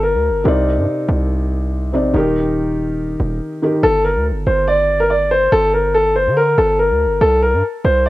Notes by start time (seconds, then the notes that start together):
Already playing: G1 G3 G4 A#4
0.03 A#4
0.14 D2
0.30 G1
0.44 C2 C3 C4 D#4 D5
0.78 G2
1.09 C2
1.93 A#1 C3 C4 D#4 D5
2.14 D#1 D#3 D#4 G4 A#4
3.20 D#1
3.62 D#3 D#4 G4 A#4
3.83 G1 A4
4.04 A#4
4.16 D2
4.31 G1
4.47 G1 C5
4.68 D5
5.00 A#4
5.10 D5
5.31 C5
5.52 G1 A4
5.74 A#4
5.95 A4
6.16 C5
6.27 D3
6.37 A#4
6.58 G1 A4
6.79 A#4
6.90 D2
7.06 G1
7.21 C2 A4
7.42 A#4
7.54 G2
7.85 C2 C5
8.06 D5